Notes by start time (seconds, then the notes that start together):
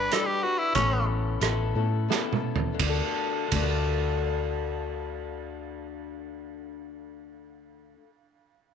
Already playing: D4 G4 B4
0.11 G3 D4 G4 A4 B4, cross-stick, closed hi-hat
0.26 G4
0.43 D4 F#4 G4 B4
0.59 E4
0.75 A1 A2 E3 B3 C#4 E4 A4, kick, closed hi-hat
1.41 A1 B3 C#4 E4 A4, cross-stick, closed hi-hat
1.75 A2 B3 C#4 E4 A4
2.08 B3 C#4 E4 A4, snare
2.33 mid tom
2.56 floor tom
2.74 D3
2.79 D2 A3 D4, kick, ride
2.86 F#4 A4
3.47 D3
3.52 D2 A3 D4, kick, ride
3.59 F#4 A4